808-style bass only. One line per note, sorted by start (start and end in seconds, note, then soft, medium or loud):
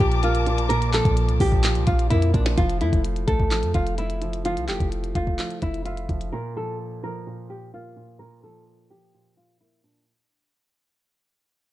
0.00 1.01 A#1 loud
1.05 1.30 A#1 loud
1.29 1.40 C2 loud
1.40 1.77 A#1 loud
1.75 1.87 C2 loud
1.87 2.10 A#1 loud
2.11 2.33 F2 loud
2.34 2.57 A#1 loud
2.58 2.82 F1 loud
2.81 2.92 F2 loud
2.93 3.26 F1 loud
3.28 3.64 A1 loud
3.63 3.74 F2 medium
3.75 4.58 F1 loud
4.57 4.70 C2 loud
4.68 4.80 F1 medium
4.80 5.14 F1 loud
5.15 5.38 F1 loud
5.62 6.07 F1 loud
6.09 6.32 F1 loud